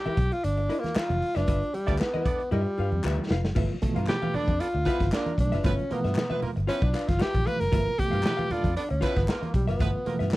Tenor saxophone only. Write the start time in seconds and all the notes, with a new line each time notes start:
Already playing: G4
0.32 F4
0.44 D4
0.79 A#3
0.97 F4
1.36 D4
1.74 G3
2.00 B3
2.52 G3
4.08 G4
4.35 D4
4.61 F4
5.13 D4
5.40 D4
5.65 C#4
5.92 B3
6.69 C#4
6.83 D4
7.08 F4
7.21 G4
7.46 B4
7.60 A#4
7.99 G4
8.51 F4
8.77 D4
8.90 C#4
9.16 B3
9.43 A#3
9.55 G3
9.68 B3